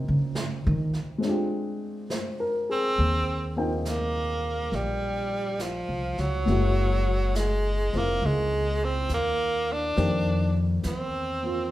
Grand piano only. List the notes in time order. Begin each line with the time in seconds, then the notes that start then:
Already playing: A#3 C4 D#4 F4 G4
1.18 G#3 C4
1.24 D4 F4
1.29 G4
2.11 C5
2.40 A#4
2.70 G#4
3.56 A#3 C4 D#4 F4 G5
6.46 G#3 A#3 E4
6.51 F#4
7.93 A#3 C4 E4
9.96 D#3 A#3 C4 G4
11.43 A#3 F4